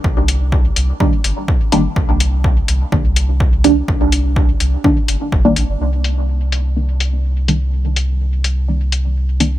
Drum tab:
HH |-x-x-x-x|-x-x-x-x|-x-x-x-x|-x-x-x-x|
BD |o-o-o-o-|o-o-o-o-|o-o-o-o-|--------|

HH |-x-x-x-x|
BD |--------|